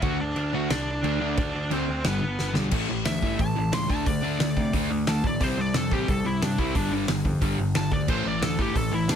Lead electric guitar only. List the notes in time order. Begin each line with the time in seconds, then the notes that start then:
0.02 F#4 F#5
0.20 D4 D5
0.55 F#4 F#5
0.70 D4 D5
1.39 D4 D5
1.72 C4 C5
2.06 B3 B4
3.06 E5
3.41 A5
3.74 C6
3.90 A5
4.06 D5
5.09 A5
5.27 D5
5.43 C5
5.61 D5
5.77 A4
5.93 G4
6.10 A4
6.26 E4
6.43 D4
6.59 E4
6.76 D4
7.76 A5
7.93 D5
8.09 C5
8.27 D5
8.44 A4
8.62 G4
8.77 A4
8.94 E4
9.11 D4